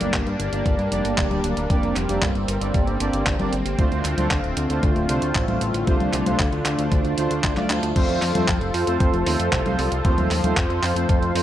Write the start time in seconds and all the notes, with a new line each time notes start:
Already playing: G3 A#3 D4
0.00 G1 A#3 D4 G4 D5, closed hi-hat, high conga
0.14 G1, kick, clap, closed hi-hat
0.26 G2, closed hi-hat
0.40 G1, closed hi-hat
0.53 G1 A#3 D4 G4 D5, closed hi-hat
0.66 G1, kick, closed hi-hat
0.79 G2, closed hi-hat
0.92 F1 A#3 D4 G4 D5, closed hi-hat
1.05 G1, closed hi-hat
1.18 D1, kick, clap, closed hi-hat
1.31 D1 A#3 D4 G4 D5, closed hi-hat, high conga
1.44 D1, closed hi-hat
1.57 D1, closed hi-hat
1.70 F1 A#3 C4 D4 G4 D5, kick, closed hi-hat
1.83 F1, closed hi-hat
1.96 F1, clap, closed hi-hat
2.09 F1 A#3 D4 G4 D5, closed hi-hat
2.22 G1, kick, clap, closed hi-hat
2.35 G1, closed hi-hat
2.48 G1, closed hi-hat
2.61 G1 A#3 D4 G4 D5, closed hi-hat
2.74 G1, kick, closed hi-hat
2.87 G1, closed hi-hat
3.00 G1 A#3 D4 G4 D5, closed hi-hat
3.13 G1, closed hi-hat
3.27 G1, kick, clap, closed hi-hat
3.39 G1 A#3 D4 G4 D5, closed hi-hat, high conga
3.53 G1, closed hi-hat
3.66 G1, closed hi-hat
3.79 D2 D3 A3 D4 F4 C5, kick, closed hi-hat
3.92 D2, closed hi-hat
4.05 D2, clap, closed hi-hat
4.18 D2 A3 D4 F4 C5, closed hi-hat, high conga
4.31 D2, kick, clap, closed hi-hat
4.44 D1, closed hi-hat
4.57 D2, closed hi-hat
4.70 D2 A3 D4 F4 C5, closed hi-hat
4.83 D2, kick, closed hi-hat
4.96 D1, closed hi-hat
5.09 C2 A3 D4 F4 C5, closed hi-hat
5.22 D2, closed hi-hat
5.35 A1, kick, clap, closed hi-hat
5.48 A1 A3 D4 F4 C5, closed hi-hat, high conga
5.61 A1, closed hi-hat
5.74 A1, closed hi-hat
5.87 C2 A3 D4 F4 C5, kick, closed hi-hat
6.00 C2, closed hi-hat, high conga
6.13 C2, clap, closed hi-hat
6.26 C2 A3 D4 F4 C5, closed hi-hat, high conga
6.39 D2, kick, clap, closed hi-hat
6.53 D2, closed hi-hat
6.66 D2, clap, closed hi-hat
6.79 D2 A3 D4 F4 C5, closed hi-hat
6.92 D2, kick, closed hi-hat
7.05 D2, closed hi-hat
7.18 D2 A3 D4 F4 C5, closed hi-hat
7.31 D2, closed hi-hat
7.44 D2, kick, clap, closed hi-hat
7.57 D2 A3 D4 F4 D5, clap, closed hi-hat, high conga
7.70 D2 A3 D4 F4 C5, clap, closed hi-hat
7.83 D2, closed hi-hat
7.96 F2 F3 A3 C4 F4 A4 C5, kick, closed hi-hat, crash
8.09 F2, closed hi-hat
8.22 F2, clap, open hi-hat
8.35 F2 A3 C4 F4 C5, closed hi-hat, high conga
8.48 F2, kick, clap, closed hi-hat
8.61 F1, closed hi-hat
8.74 F2, open hi-hat
8.87 F2 A3 C4 F4 C5, closed hi-hat
9.00 F2, kick, closed hi-hat
9.13 F1, closed hi-hat
9.26 D#2 A3 C4 F4 C5, open hi-hat
9.39 F2, closed hi-hat
9.53 C2, kick, clap, closed hi-hat
9.65 C2 A3 C4 F4 C5, closed hi-hat, high conga
9.79 C2, open hi-hat
9.92 C2, closed hi-hat
10.05 D#2 A3 C4 F4 C5, kick, closed hi-hat
10.18 D#2, closed hi-hat, high conga
10.31 D#2, clap, open hi-hat
10.44 D#2 A3 C4 F4 C5, closed hi-hat, high conga
10.57 F2, kick, clap, closed hi-hat
10.70 F2, closed hi-hat
10.83 F2, clap, open hi-hat
10.96 F2 A3 C4 F4 C5, closed hi-hat
11.09 F2, kick, closed hi-hat
11.22 F2, closed hi-hat
11.35 F2 A3 C4 F4 C5, open hi-hat